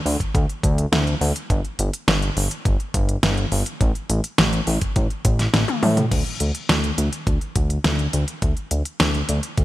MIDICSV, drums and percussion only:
0, 0, Header, 1, 2, 480
1, 0, Start_track
1, 0, Tempo, 576923
1, 1248, Time_signature, 4, 2, 24, 8
1, 8025, End_track
2, 0, Start_track
2, 0, Title_t, "Drums"
2, 50, Note_on_c, 9, 46, 79
2, 134, Note_off_c, 9, 46, 0
2, 168, Note_on_c, 9, 36, 59
2, 171, Note_on_c, 9, 42, 50
2, 251, Note_off_c, 9, 36, 0
2, 254, Note_off_c, 9, 42, 0
2, 288, Note_on_c, 9, 36, 114
2, 291, Note_on_c, 9, 42, 51
2, 371, Note_off_c, 9, 36, 0
2, 374, Note_off_c, 9, 42, 0
2, 411, Note_on_c, 9, 42, 26
2, 494, Note_off_c, 9, 42, 0
2, 528, Note_on_c, 9, 36, 101
2, 531, Note_on_c, 9, 42, 91
2, 611, Note_off_c, 9, 36, 0
2, 614, Note_off_c, 9, 42, 0
2, 651, Note_on_c, 9, 42, 53
2, 734, Note_off_c, 9, 42, 0
2, 771, Note_on_c, 9, 38, 116
2, 771, Note_on_c, 9, 42, 53
2, 854, Note_off_c, 9, 38, 0
2, 854, Note_off_c, 9, 42, 0
2, 891, Note_on_c, 9, 42, 25
2, 974, Note_off_c, 9, 42, 0
2, 1010, Note_on_c, 9, 46, 79
2, 1093, Note_off_c, 9, 46, 0
2, 1130, Note_on_c, 9, 42, 51
2, 1213, Note_off_c, 9, 42, 0
2, 1248, Note_on_c, 9, 36, 114
2, 1249, Note_on_c, 9, 42, 54
2, 1331, Note_off_c, 9, 36, 0
2, 1332, Note_off_c, 9, 42, 0
2, 1369, Note_on_c, 9, 42, 25
2, 1452, Note_off_c, 9, 42, 0
2, 1489, Note_on_c, 9, 42, 91
2, 1572, Note_off_c, 9, 42, 0
2, 1610, Note_on_c, 9, 42, 51
2, 1693, Note_off_c, 9, 42, 0
2, 1730, Note_on_c, 9, 38, 112
2, 1730, Note_on_c, 9, 42, 53
2, 1813, Note_off_c, 9, 38, 0
2, 1813, Note_off_c, 9, 42, 0
2, 1850, Note_on_c, 9, 42, 26
2, 1933, Note_off_c, 9, 42, 0
2, 1970, Note_on_c, 9, 46, 82
2, 2053, Note_off_c, 9, 46, 0
2, 2089, Note_on_c, 9, 42, 52
2, 2173, Note_off_c, 9, 42, 0
2, 2208, Note_on_c, 9, 36, 116
2, 2209, Note_on_c, 9, 42, 54
2, 2291, Note_off_c, 9, 36, 0
2, 2292, Note_off_c, 9, 42, 0
2, 2329, Note_on_c, 9, 42, 26
2, 2412, Note_off_c, 9, 42, 0
2, 2448, Note_on_c, 9, 36, 103
2, 2448, Note_on_c, 9, 42, 95
2, 2531, Note_off_c, 9, 36, 0
2, 2531, Note_off_c, 9, 42, 0
2, 2569, Note_on_c, 9, 42, 54
2, 2652, Note_off_c, 9, 42, 0
2, 2688, Note_on_c, 9, 38, 115
2, 2688, Note_on_c, 9, 42, 53
2, 2771, Note_off_c, 9, 38, 0
2, 2771, Note_off_c, 9, 42, 0
2, 2808, Note_on_c, 9, 42, 26
2, 2891, Note_off_c, 9, 42, 0
2, 2927, Note_on_c, 9, 46, 82
2, 3010, Note_off_c, 9, 46, 0
2, 3047, Note_on_c, 9, 42, 52
2, 3130, Note_off_c, 9, 42, 0
2, 3167, Note_on_c, 9, 42, 55
2, 3168, Note_on_c, 9, 36, 113
2, 3250, Note_off_c, 9, 42, 0
2, 3251, Note_off_c, 9, 36, 0
2, 3288, Note_on_c, 9, 42, 27
2, 3372, Note_off_c, 9, 42, 0
2, 3408, Note_on_c, 9, 42, 97
2, 3491, Note_off_c, 9, 42, 0
2, 3527, Note_on_c, 9, 42, 54
2, 3610, Note_off_c, 9, 42, 0
2, 3647, Note_on_c, 9, 38, 117
2, 3647, Note_on_c, 9, 42, 55
2, 3730, Note_off_c, 9, 38, 0
2, 3730, Note_off_c, 9, 42, 0
2, 3767, Note_on_c, 9, 42, 27
2, 3850, Note_off_c, 9, 42, 0
2, 3885, Note_on_c, 9, 46, 84
2, 3969, Note_off_c, 9, 46, 0
2, 4005, Note_on_c, 9, 42, 54
2, 4008, Note_on_c, 9, 36, 60
2, 4089, Note_off_c, 9, 42, 0
2, 4091, Note_off_c, 9, 36, 0
2, 4125, Note_on_c, 9, 42, 54
2, 4127, Note_on_c, 9, 36, 116
2, 4208, Note_off_c, 9, 42, 0
2, 4211, Note_off_c, 9, 36, 0
2, 4247, Note_on_c, 9, 42, 27
2, 4330, Note_off_c, 9, 42, 0
2, 4366, Note_on_c, 9, 42, 99
2, 4367, Note_on_c, 9, 36, 103
2, 4449, Note_off_c, 9, 42, 0
2, 4451, Note_off_c, 9, 36, 0
2, 4487, Note_on_c, 9, 38, 37
2, 4487, Note_on_c, 9, 42, 57
2, 4570, Note_off_c, 9, 38, 0
2, 4570, Note_off_c, 9, 42, 0
2, 4606, Note_on_c, 9, 38, 120
2, 4606, Note_on_c, 9, 42, 55
2, 4606, Note_on_c, 9, 48, 64
2, 4690, Note_off_c, 9, 38, 0
2, 4690, Note_off_c, 9, 42, 0
2, 4690, Note_off_c, 9, 48, 0
2, 4728, Note_on_c, 9, 42, 27
2, 4728, Note_on_c, 9, 48, 64
2, 4811, Note_off_c, 9, 42, 0
2, 4811, Note_off_c, 9, 48, 0
2, 4848, Note_on_c, 9, 46, 84
2, 4848, Note_on_c, 9, 47, 90
2, 4931, Note_off_c, 9, 46, 0
2, 4931, Note_off_c, 9, 47, 0
2, 4968, Note_on_c, 9, 42, 55
2, 4968, Note_on_c, 9, 45, 84
2, 5051, Note_off_c, 9, 42, 0
2, 5051, Note_off_c, 9, 45, 0
2, 5088, Note_on_c, 9, 36, 110
2, 5089, Note_on_c, 9, 42, 54
2, 5089, Note_on_c, 9, 49, 93
2, 5171, Note_off_c, 9, 36, 0
2, 5172, Note_off_c, 9, 42, 0
2, 5172, Note_off_c, 9, 49, 0
2, 5207, Note_on_c, 9, 42, 26
2, 5291, Note_off_c, 9, 42, 0
2, 5326, Note_on_c, 9, 42, 91
2, 5409, Note_off_c, 9, 42, 0
2, 5447, Note_on_c, 9, 42, 53
2, 5530, Note_off_c, 9, 42, 0
2, 5568, Note_on_c, 9, 38, 112
2, 5568, Note_on_c, 9, 42, 56
2, 5651, Note_off_c, 9, 38, 0
2, 5651, Note_off_c, 9, 42, 0
2, 5688, Note_on_c, 9, 42, 27
2, 5771, Note_off_c, 9, 42, 0
2, 5808, Note_on_c, 9, 42, 93
2, 5891, Note_off_c, 9, 42, 0
2, 5929, Note_on_c, 9, 42, 53
2, 6012, Note_off_c, 9, 42, 0
2, 6047, Note_on_c, 9, 36, 114
2, 6048, Note_on_c, 9, 42, 53
2, 6131, Note_off_c, 9, 36, 0
2, 6131, Note_off_c, 9, 42, 0
2, 6168, Note_on_c, 9, 42, 27
2, 6251, Note_off_c, 9, 42, 0
2, 6286, Note_on_c, 9, 42, 95
2, 6287, Note_on_c, 9, 36, 100
2, 6370, Note_off_c, 9, 42, 0
2, 6371, Note_off_c, 9, 36, 0
2, 6407, Note_on_c, 9, 42, 55
2, 6490, Note_off_c, 9, 42, 0
2, 6526, Note_on_c, 9, 38, 114
2, 6526, Note_on_c, 9, 42, 54
2, 6609, Note_off_c, 9, 38, 0
2, 6609, Note_off_c, 9, 42, 0
2, 6647, Note_on_c, 9, 42, 26
2, 6730, Note_off_c, 9, 42, 0
2, 6767, Note_on_c, 9, 42, 95
2, 6850, Note_off_c, 9, 42, 0
2, 6887, Note_on_c, 9, 42, 54
2, 6971, Note_off_c, 9, 42, 0
2, 7007, Note_on_c, 9, 36, 111
2, 7007, Note_on_c, 9, 42, 55
2, 7090, Note_off_c, 9, 42, 0
2, 7091, Note_off_c, 9, 36, 0
2, 7127, Note_on_c, 9, 42, 27
2, 7210, Note_off_c, 9, 42, 0
2, 7247, Note_on_c, 9, 42, 93
2, 7330, Note_off_c, 9, 42, 0
2, 7367, Note_on_c, 9, 42, 55
2, 7450, Note_off_c, 9, 42, 0
2, 7487, Note_on_c, 9, 38, 122
2, 7487, Note_on_c, 9, 42, 54
2, 7570, Note_off_c, 9, 38, 0
2, 7570, Note_off_c, 9, 42, 0
2, 7607, Note_on_c, 9, 42, 27
2, 7690, Note_off_c, 9, 42, 0
2, 7727, Note_on_c, 9, 42, 94
2, 7810, Note_off_c, 9, 42, 0
2, 7846, Note_on_c, 9, 42, 52
2, 7929, Note_off_c, 9, 42, 0
2, 7966, Note_on_c, 9, 42, 54
2, 7968, Note_on_c, 9, 36, 118
2, 8025, Note_off_c, 9, 36, 0
2, 8025, Note_off_c, 9, 42, 0
2, 8025, End_track
0, 0, End_of_file